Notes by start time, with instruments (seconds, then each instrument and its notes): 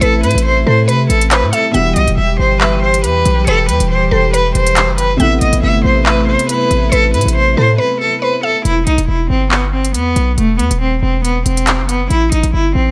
Already playing: grand piano C3 A3 B3 E4, string section C3 A3 E4
0.01 808-style bass A1, cello A4, synth pluck B4, closed hi-hat
0.23 808-style bass A2, cello B4, closed hi-hat
0.31 closed hi-hat
0.35 808-style bass A1, closed hi-hat
0.45 cello C5
0.67 808-style bass A2, synth pluck A4, cello C5
0.88 808-style bass C3, synth pluck B4, cello B4, closed hi-hat
1.10 808-style bass A1, cello A4, closed hi-hat
1.21 closed hi-hat
1.31 cello B4, synth pluck C5, clap, closed hi-hat
1.43 808-style bass A2
1.53 cello A4, synth pluck E5, closed hi-hat
1.71 808-style bass E1, grand piano B2 E3, string section E3 G3 G4, cello E5, synth pluck F#5, closed hi-hat
1.75 grand piano G3 E4
1.96 808-style bass B1, cello D#5, closed hi-hat
2.08 808-style bass E1, closed hi-hat
2.18 808-style bass E1, cello E5
2.39 808-style bass G1, cello C5
2.61 cello B4, synth pluck E5, clap
2.82 cello C5
2.94 closed hi-hat
3.04 808-style bass E2, cello B4, closed hi-hat
3.25 808-style bass B1, closed hi-hat
3.47 808-style bass E1, cello A4, synth pluck B4, closed hi-hat
3.69 808-style bass E2, cello B4, closed hi-hat
3.80 808-style bass D#1, closed hi-hat
3.90 cello C5
4.11 808-style bass E1, synth pluck A4, cello C5
4.33 cello B4, synth pluck B4, closed hi-hat
4.55 808-style bass E1, cello C5, closed hi-hat
4.67 closed hi-hat
4.76 clap, closed hi-hat
4.88 808-style bass F#1
4.98 cello B4, closed hi-hat
5.17 808-style bass A1, grand piano C3 A3, string section C3 A3 B3 E4, cello E5, synth pluck F#5, closed hi-hat
5.21 grand piano B3 E4
5.41 808-style bass A1, cello D#5, closed hi-hat
5.53 808-style bass A1, closed hi-hat
5.63 808-style bass G1, cello E5
5.84 808-style bass A1, cello C5
6.06 cello B4, synth pluck E5, clap
6.28 cello C5
6.39 closed hi-hat
6.49 cello B4, closed hi-hat
6.71 808-style bass A1, closed hi-hat
6.92 808-style bass A1, cello A4, synth pluck B4, closed hi-hat
7.14 808-style bass A2, cello B4, closed hi-hat
7.21 closed hi-hat
7.25 808-style bass A1, closed hi-hat
7.35 cello C5
7.57 808-style bass A2, synth pluck A4, cello C5
7.78 synth pluck B4, cello B4
8.00 cello A4
8.22 cello B4, synth pluck C5
8.43 cello A4, synth pluck E5
8.65 808-style bass E1, cello E4, closed hi-hat
8.87 808-style bass B1, cello D#4, closed hi-hat
8.98 808-style bass E1, closed hi-hat
9.08 808-style bass E1, cello E4
9.30 808-style bass G1, cello C4
9.51 cello B3, clap
9.73 cello C4
9.85 closed hi-hat
9.94 808-style bass E2, cello B3, closed hi-hat
10.16 808-style bass B1, closed hi-hat
10.38 808-style bass E1, cello A3, closed hi-hat
10.59 808-style bass E2, cello B3, closed hi-hat
10.71 808-style bass D#1, closed hi-hat
10.81 cello C4
11.03 808-style bass E1, cello C4
11.24 cello B3, closed hi-hat
11.46 808-style bass E1, cello C4, closed hi-hat
11.57 closed hi-hat
11.67 clap, closed hi-hat
11.79 808-style bass F#1
11.89 cello B3, closed hi-hat
12.10 808-style bass A1, cello E4, closed hi-hat
12.32 808-style bass A1, cello D#4, closed hi-hat
12.43 808-style bass A1, closed hi-hat
12.54 808-style bass G1, cello E4
12.75 808-style bass A1, cello C4